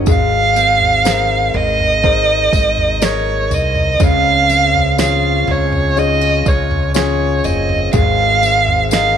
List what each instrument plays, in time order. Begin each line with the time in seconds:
Already playing: steel-string acoustic guitar C#4 D#4 A#4
0.06 fingered electric bass G#1, steel-string acoustic guitar G#2, grand piano G#3, violin F5, kick, floor tom, tambourine
0.56 steel-string acoustic guitar C4, tambourine
0.81 floor tom
1.05 steel-string acoustic guitar D#4, grand piano G#4 A#4 C5, snare, tambourine
1.54 fingered electric bass G#1, steel-string acoustic guitar A#4, violin D#5, floor tom
1.79 floor tom
2.03 steel-string acoustic guitar D#4, grand piano G#4 A#4 C5, kick
2.52 fingered electric bass G#1, kick, tambourine
2.77 floor tom
3.02 grand piano G#4 A#4 D#5, steel-string acoustic guitar A#4, violin C#5, snare, tambourine
3.50 fingered electric bass C2, steel-string acoustic guitar C4, violin D#5, floor tom, tambourine
3.75 floor tom
4.00 fingered electric bass C#2, grand piano C#3, steel-string acoustic guitar C#3, violin F5, kick, floor tom, tambourine
4.49 steel-string acoustic guitar C4, tambourine
4.74 floor tom
4.98 grand piano C#4 F4 G#4, steel-string acoustic guitar F4, violin F5, snare, tambourine
5.47 fingered electric bass C#2, steel-string acoustic guitar G#4, violin C#5, floor tom
5.72 floor tom
5.96 grand piano C#4 F4 G#4, steel-string acoustic guitar D#4, violin D#5, tambourine
6.21 steel-string acoustic guitar F4
6.46 fingered electric bass C#2, violin C#5, kick, tambourine
6.71 floor tom
6.94 grand piano C#4 F4 G#4, steel-string acoustic guitar G#4, violin C#5, snare, tambourine
7.44 fingered electric bass F#1, steel-string acoustic guitar C4, violin D#5, floor tom, tambourine
7.69 floor tom
7.93 fingered electric bass G#1, steel-string acoustic guitar G#2, grand piano G#3, violin F5, kick, floor tom, tambourine
8.42 steel-string acoustic guitar C4, tambourine
8.68 floor tom
8.91 steel-string acoustic guitar D#4, grand piano G#4 A#4 D#5, violin F5, snare, tambourine